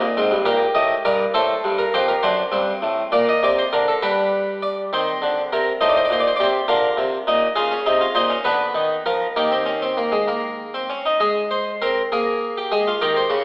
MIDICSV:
0, 0, Header, 1, 2, 480
1, 0, Start_track
1, 0, Tempo, 592885
1, 372, Time_signature, 6, 3, 24, 8
1, 6613, Tempo, 609137
1, 9013, Tempo, 595238
1, 10811, End_track
2, 0, Start_track
2, 0, Title_t, "Harpsichord"
2, 0, Program_c, 0, 6
2, 0, Note_on_c, 0, 63, 87
2, 11, Note_on_c, 0, 46, 73
2, 128, Note_off_c, 0, 46, 0
2, 139, Note_on_c, 0, 44, 78
2, 140, Note_on_c, 0, 60, 80
2, 252, Note_off_c, 0, 44, 0
2, 253, Note_on_c, 0, 43, 75
2, 286, Note_off_c, 0, 60, 0
2, 347, Note_off_c, 0, 63, 0
2, 368, Note_off_c, 0, 43, 0
2, 368, Note_on_c, 0, 67, 96
2, 370, Note_on_c, 0, 46, 86
2, 370, Note_on_c, 0, 70, 78
2, 518, Note_off_c, 0, 46, 0
2, 518, Note_off_c, 0, 70, 0
2, 604, Note_on_c, 0, 75, 81
2, 607, Note_on_c, 0, 45, 78
2, 754, Note_off_c, 0, 75, 0
2, 756, Note_off_c, 0, 45, 0
2, 832, Note_off_c, 0, 67, 0
2, 851, Note_on_c, 0, 70, 101
2, 852, Note_on_c, 0, 43, 79
2, 852, Note_on_c, 0, 74, 82
2, 998, Note_off_c, 0, 70, 0
2, 999, Note_off_c, 0, 43, 0
2, 999, Note_off_c, 0, 74, 0
2, 1086, Note_on_c, 0, 69, 102
2, 1088, Note_on_c, 0, 45, 82
2, 1089, Note_on_c, 0, 72, 75
2, 1236, Note_off_c, 0, 45, 0
2, 1330, Note_on_c, 0, 43, 77
2, 1437, Note_off_c, 0, 72, 0
2, 1445, Note_on_c, 0, 70, 76
2, 1478, Note_off_c, 0, 43, 0
2, 1552, Note_off_c, 0, 69, 0
2, 1562, Note_off_c, 0, 70, 0
2, 1571, Note_on_c, 0, 67, 96
2, 1573, Note_on_c, 0, 41, 83
2, 1573, Note_on_c, 0, 72, 84
2, 1686, Note_off_c, 0, 72, 0
2, 1688, Note_on_c, 0, 70, 73
2, 1718, Note_off_c, 0, 67, 0
2, 1720, Note_off_c, 0, 41, 0
2, 1803, Note_off_c, 0, 70, 0
2, 1804, Note_on_c, 0, 72, 85
2, 1806, Note_on_c, 0, 42, 86
2, 1806, Note_on_c, 0, 62, 102
2, 1955, Note_off_c, 0, 42, 0
2, 1955, Note_off_c, 0, 62, 0
2, 2038, Note_on_c, 0, 43, 75
2, 2040, Note_on_c, 0, 60, 84
2, 2190, Note_off_c, 0, 43, 0
2, 2286, Note_on_c, 0, 45, 74
2, 2436, Note_off_c, 0, 45, 0
2, 2506, Note_off_c, 0, 72, 0
2, 2512, Note_off_c, 0, 60, 0
2, 2527, Note_on_c, 0, 74, 79
2, 2528, Note_on_c, 0, 46, 79
2, 2532, Note_on_c, 0, 58, 87
2, 2646, Note_off_c, 0, 74, 0
2, 2662, Note_on_c, 0, 75, 80
2, 2679, Note_off_c, 0, 46, 0
2, 2774, Note_off_c, 0, 75, 0
2, 2778, Note_on_c, 0, 48, 71
2, 2783, Note_on_c, 0, 74, 72
2, 2896, Note_off_c, 0, 74, 0
2, 2901, Note_on_c, 0, 72, 62
2, 2927, Note_off_c, 0, 48, 0
2, 3016, Note_off_c, 0, 72, 0
2, 3018, Note_on_c, 0, 70, 71
2, 3019, Note_on_c, 0, 50, 70
2, 3135, Note_off_c, 0, 70, 0
2, 3142, Note_on_c, 0, 69, 61
2, 3169, Note_off_c, 0, 50, 0
2, 3239, Note_off_c, 0, 58, 0
2, 3258, Note_off_c, 0, 69, 0
2, 3259, Note_on_c, 0, 55, 65
2, 3259, Note_on_c, 0, 62, 65
2, 3259, Note_on_c, 0, 71, 79
2, 3727, Note_off_c, 0, 71, 0
2, 3745, Note_on_c, 0, 74, 72
2, 3893, Note_off_c, 0, 74, 0
2, 3960, Note_off_c, 0, 55, 0
2, 3960, Note_off_c, 0, 62, 0
2, 3990, Note_on_c, 0, 51, 67
2, 3992, Note_on_c, 0, 72, 77
2, 3994, Note_on_c, 0, 60, 64
2, 4136, Note_off_c, 0, 51, 0
2, 4227, Note_on_c, 0, 50, 67
2, 4374, Note_off_c, 0, 50, 0
2, 4452, Note_off_c, 0, 72, 0
2, 4473, Note_on_c, 0, 48, 69
2, 4475, Note_on_c, 0, 70, 76
2, 4618, Note_off_c, 0, 48, 0
2, 4619, Note_off_c, 0, 70, 0
2, 4685, Note_off_c, 0, 60, 0
2, 4702, Note_on_c, 0, 63, 83
2, 4703, Note_on_c, 0, 45, 74
2, 4704, Note_on_c, 0, 72, 62
2, 4767, Note_off_c, 0, 72, 0
2, 4769, Note_on_c, 0, 74, 58
2, 4829, Note_on_c, 0, 72, 51
2, 4831, Note_off_c, 0, 74, 0
2, 4850, Note_off_c, 0, 45, 0
2, 4894, Note_off_c, 0, 72, 0
2, 4898, Note_on_c, 0, 74, 57
2, 4941, Note_on_c, 0, 46, 71
2, 4955, Note_on_c, 0, 72, 66
2, 4960, Note_off_c, 0, 74, 0
2, 5017, Note_on_c, 0, 74, 64
2, 5021, Note_off_c, 0, 72, 0
2, 5077, Note_on_c, 0, 72, 60
2, 5085, Note_off_c, 0, 74, 0
2, 5088, Note_off_c, 0, 46, 0
2, 5147, Note_off_c, 0, 72, 0
2, 5151, Note_on_c, 0, 74, 67
2, 5165, Note_off_c, 0, 63, 0
2, 5182, Note_on_c, 0, 48, 75
2, 5182, Note_on_c, 0, 67, 95
2, 5210, Note_on_c, 0, 72, 84
2, 5216, Note_off_c, 0, 74, 0
2, 5329, Note_off_c, 0, 48, 0
2, 5329, Note_off_c, 0, 67, 0
2, 5407, Note_off_c, 0, 72, 0
2, 5410, Note_on_c, 0, 70, 77
2, 5411, Note_on_c, 0, 50, 78
2, 5411, Note_on_c, 0, 65, 84
2, 5560, Note_off_c, 0, 50, 0
2, 5646, Note_on_c, 0, 48, 75
2, 5796, Note_off_c, 0, 48, 0
2, 5874, Note_off_c, 0, 65, 0
2, 5889, Note_on_c, 0, 46, 85
2, 5891, Note_on_c, 0, 63, 88
2, 6037, Note_off_c, 0, 46, 0
2, 6039, Note_off_c, 0, 63, 0
2, 6105, Note_off_c, 0, 70, 0
2, 6117, Note_on_c, 0, 68, 96
2, 6120, Note_on_c, 0, 65, 82
2, 6122, Note_on_c, 0, 49, 76
2, 6241, Note_off_c, 0, 65, 0
2, 6245, Note_on_c, 0, 61, 65
2, 6273, Note_off_c, 0, 49, 0
2, 6364, Note_off_c, 0, 61, 0
2, 6365, Note_on_c, 0, 63, 76
2, 6369, Note_on_c, 0, 48, 82
2, 6484, Note_off_c, 0, 63, 0
2, 6485, Note_on_c, 0, 65, 71
2, 6519, Note_off_c, 0, 48, 0
2, 6591, Note_off_c, 0, 68, 0
2, 6597, Note_on_c, 0, 72, 93
2, 6598, Note_on_c, 0, 46, 77
2, 6602, Note_on_c, 0, 63, 82
2, 6605, Note_off_c, 0, 65, 0
2, 6717, Note_on_c, 0, 61, 77
2, 6721, Note_off_c, 0, 63, 0
2, 6748, Note_off_c, 0, 72, 0
2, 6749, Note_off_c, 0, 46, 0
2, 6831, Note_on_c, 0, 71, 88
2, 6836, Note_on_c, 0, 59, 76
2, 6837, Note_off_c, 0, 61, 0
2, 6838, Note_on_c, 0, 50, 73
2, 6988, Note_off_c, 0, 50, 0
2, 7069, Note_on_c, 0, 51, 75
2, 7222, Note_off_c, 0, 51, 0
2, 7302, Note_off_c, 0, 71, 0
2, 7314, Note_on_c, 0, 53, 72
2, 7315, Note_on_c, 0, 70, 86
2, 7466, Note_off_c, 0, 53, 0
2, 7467, Note_off_c, 0, 70, 0
2, 7537, Note_off_c, 0, 59, 0
2, 7555, Note_on_c, 0, 58, 73
2, 7556, Note_on_c, 0, 51, 69
2, 7556, Note_on_c, 0, 67, 72
2, 7673, Note_on_c, 0, 60, 54
2, 7677, Note_off_c, 0, 58, 0
2, 7787, Note_on_c, 0, 61, 67
2, 7796, Note_off_c, 0, 60, 0
2, 7913, Note_off_c, 0, 61, 0
2, 7916, Note_on_c, 0, 60, 61
2, 8035, Note_on_c, 0, 58, 73
2, 8038, Note_off_c, 0, 60, 0
2, 8151, Note_on_c, 0, 56, 67
2, 8158, Note_off_c, 0, 58, 0
2, 8274, Note_on_c, 0, 58, 69
2, 8276, Note_off_c, 0, 56, 0
2, 8632, Note_off_c, 0, 58, 0
2, 8642, Note_on_c, 0, 60, 61
2, 8735, Note_off_c, 0, 51, 0
2, 8736, Note_off_c, 0, 67, 0
2, 8763, Note_off_c, 0, 60, 0
2, 8764, Note_on_c, 0, 61, 66
2, 8884, Note_off_c, 0, 61, 0
2, 8889, Note_on_c, 0, 63, 62
2, 9005, Note_on_c, 0, 56, 93
2, 9005, Note_on_c, 0, 68, 74
2, 9006, Note_off_c, 0, 63, 0
2, 9161, Note_off_c, 0, 68, 0
2, 9251, Note_on_c, 0, 72, 73
2, 9402, Note_off_c, 0, 72, 0
2, 9477, Note_off_c, 0, 56, 0
2, 9499, Note_on_c, 0, 70, 77
2, 9502, Note_on_c, 0, 60, 91
2, 9647, Note_off_c, 0, 70, 0
2, 9649, Note_off_c, 0, 60, 0
2, 9744, Note_on_c, 0, 68, 72
2, 9747, Note_on_c, 0, 58, 87
2, 10088, Note_off_c, 0, 68, 0
2, 10111, Note_on_c, 0, 67, 71
2, 10206, Note_off_c, 0, 58, 0
2, 10219, Note_off_c, 0, 67, 0
2, 10225, Note_on_c, 0, 68, 75
2, 10227, Note_on_c, 0, 56, 86
2, 10336, Note_off_c, 0, 68, 0
2, 10353, Note_on_c, 0, 65, 75
2, 10371, Note_off_c, 0, 56, 0
2, 10460, Note_off_c, 0, 65, 0
2, 10465, Note_on_c, 0, 70, 80
2, 10466, Note_on_c, 0, 67, 76
2, 10469, Note_on_c, 0, 51, 96
2, 10576, Note_off_c, 0, 70, 0
2, 10587, Note_on_c, 0, 72, 62
2, 10612, Note_off_c, 0, 51, 0
2, 10693, Note_on_c, 0, 73, 70
2, 10696, Note_off_c, 0, 72, 0
2, 10697, Note_on_c, 0, 49, 96
2, 10808, Note_off_c, 0, 73, 0
2, 10811, Note_off_c, 0, 49, 0
2, 10811, Note_off_c, 0, 67, 0
2, 10811, End_track
0, 0, End_of_file